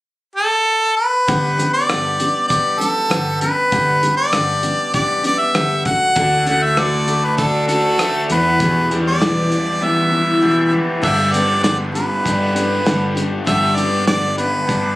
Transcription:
0.36 harmonica A4
0.96 harmonica B4
1.28 steel-string acoustic guitar G2 D3 G3 B3 D4 G4, kick, closed hi-hat
1.58 steel-string acoustic guitar G3 B3 D4 G4, closed hi-hat
1.74 harmonica D5
1.89 steel-string acoustic guitar G2 D3 G3 B3 D4 G4, cross-stick, closed hi-hat
2.20 steel-string acoustic guitar G3 B3 D4 G4, closed hi-hat
2.48 steel-string acoustic guitar G3 B3 D4 G4, harmonica D5, kick, closed hi-hat
2.79 steel-string acoustic guitar G3 B3 D4 G4, harmonica A4, closed hi-hat
3.10 steel-string acoustic guitar G2 D3 G3 B3 D4 G4, cross-stick, closed hi-hat
3.41 steel-string acoustic guitar G3 B3 D4 G4, harmonica B4, closed hi-hat
3.72 steel-string acoustic guitar G2 D3 G3 B3 D4 G4, kick, closed hi-hat
4.03 steel-string acoustic guitar G3 B3 D4 G4, closed hi-hat
4.17 harmonica D5
4.32 steel-string acoustic guitar G2 D3 G3 B3 D4 G4, cross-stick, closed hi-hat
4.63 steel-string acoustic guitar G3 B3 D4 G4, closed hi-hat
4.93 steel-string acoustic guitar G3 B3 D4 G4, harmonica D5, kick, closed hi-hat
5.23 steel-string acoustic guitar G3 B3 D4 G4, harmonica D5, closed hi-hat
5.39 harmonica E5
5.54 steel-string acoustic guitar G2 D3 G3 B3 D4 G4, cross-stick, closed hi-hat
5.85 steel-string acoustic guitar A3 D4 F#4, harmonica F#5, kick, closed hi-hat
6.16 picked electric bass D2, steel-string acoustic guitar D3 A3 D4 F#4, kick, closed hi-hat
6.46 steel-string acoustic guitar A3 D4 F#4, closed hi-hat
6.64 harmonica E5
6.77 steel-string acoustic guitar D3 A3 D4 F#4, harmonica D5, cross-stick, closed hi-hat
7.06 steel-string acoustic guitar A3 D4 F#4, closed hi-hat
7.25 harmonica B4
7.37 steel-string acoustic guitar D3 A3 D4 F#4, harmonica A4, kick, closed hi-hat
7.67 steel-string acoustic guitar A3 D4 F#4, harmonica A4, closed hi-hat
7.98 steel-string acoustic guitar D3 A3 D4 F#4, cross-stick, closed hi-hat
8.28 picked electric bass E2, overdriven electric guitar E2, steel-string acoustic guitar E3 G3 B3 E4, harmonica B4, closed hi-hat
8.60 steel-string acoustic guitar E2 B2 E3 G3 B3 E4, kick, closed hi-hat
8.90 steel-string acoustic guitar E3 G3 B3 E4, closed hi-hat
9.08 harmonica D5
9.21 steel-string acoustic guitar E2 B2 E3 G3 B3 E4, snare, closed hi-hat
9.51 steel-string acoustic guitar E3 G3 B3 E4, closed hi-hat
9.81 steel-string acoustic guitar E3 G3 B3 E4
9.85 harmonica E5
10.12 steel-string acoustic guitar E3 G3 B3 E4
10.42 steel-string acoustic guitar E2 B2 E3 G3 B3 E4
10.72 steel-string acoustic guitar E3 G3 B3 E4
11.02 steel-string acoustic guitar G2 D3 G3 B3 D4 G4, picked electric bass G2, harmonica E5, kick, crash
11.32 steel-string acoustic guitar G3 B3 D4 G4, harmonica D5, closed hi-hat
11.63 steel-string acoustic guitar G2 D3 G3 B3 D4 G4, harmonica D5, snare, closed hi-hat
11.94 steel-string acoustic guitar G3 B3 D4 G4, harmonica B4, closed hi-hat
12.24 overdriven electric guitar G2 D3, picked electric bass G2, steel-string acoustic guitar G3 B3 D4 G4, kick, closed hi-hat
12.55 steel-string acoustic guitar G3 B3 D4 G4, harmonica B4, closed hi-hat
12.85 steel-string acoustic guitar G2 D3 G3 B3 D4 G4, picked electric bass G2, snare, closed hi-hat
13.15 steel-string acoustic guitar G3 B3 D4 G4, closed hi-hat
13.46 steel-string acoustic guitar G2 D3 G3 B3 D4 G4, picked electric bass G2, harmonica E5, kick, closed hi-hat
13.76 steel-string acoustic guitar G3 B3 D4 G4, harmonica D5, closed hi-hat
14.07 steel-string acoustic guitar G2 D3 G3 B3 D4 G4, harmonica D5, snare, closed hi-hat
14.37 steel-string acoustic guitar G3 B3 D4 G4, harmonica B4, closed hi-hat
14.67 overdriven electric guitar G2 D3, picked electric bass G2, steel-string acoustic guitar G3 B3 D4 G4, kick, closed hi-hat

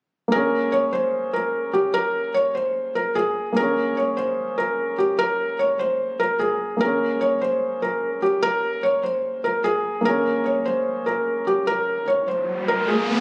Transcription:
0.28 grand piano A#3 G#4, felt piano A#4
0.36 grand piano C#4
0.72 felt piano C#5
0.93 felt piano C5
1.33 felt piano A#4
1.73 felt piano G4
1.94 felt piano A#4
2.34 felt piano C#5
2.55 felt piano C5
2.95 felt piano A#4
3.15 felt piano G#4
3.52 grand piano A#3 G#4
3.57 grand piano C#4, felt piano A#4
3.97 felt piano C#5
4.17 felt piano C5
4.58 felt piano A#4
4.98 felt piano G4
5.19 felt piano A#4
5.59 felt piano C#5
5.79 felt piano C5
6.20 felt piano A#4
6.39 felt piano G#4
6.77 grand piano A#3 G#4, felt piano A#4
6.84 grand piano C#4
7.21 felt piano C#5
7.42 felt piano C5
7.82 felt piano A#4
8.22 felt piano G4
8.43 felt piano A#4
8.83 felt piano C#5
9.03 felt piano C5
9.44 felt piano A#4
9.64 felt piano G#4
10.01 grand piano A#3 G#4
10.05 grand piano C#4, felt piano A#4
10.46 felt piano C#5
10.65 felt piano C5
11.06 felt piano A#4
11.47 felt piano G4
11.67 felt piano A#4, riser
12.08 felt piano C#5
12.28 felt piano C5
12.68 felt piano A#4
12.88 felt piano G#4

